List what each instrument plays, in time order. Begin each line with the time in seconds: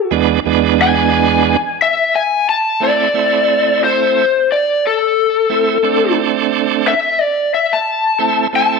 0.11 tonewheel organ E2 G#3 B3 D4
0.46 tonewheel organ E2 G#3 B3 D4
0.82 lead electric guitar G#5
1.82 lead electric guitar E5
2.15 lead electric guitar G#5
2.49 lead electric guitar A5
2.80 tonewheel organ A3 C4 E4, lead electric guitar D5
3.14 tonewheel organ A3 C4 E4
3.84 lead electric guitar C5
4.52 lead electric guitar D5
4.87 lead electric guitar A4
5.49 tonewheel organ A3 C4 E4
5.83 tonewheel organ A3 C4 D4
6.88 lead electric guitar E5
7.21 lead electric guitar D5
7.54 lead electric guitar E5
7.73 lead electric guitar A5
8.19 tonewheel organ A3 C4 E4
8.53 tonewheel organ A3 C4 E4, lead electric guitar A5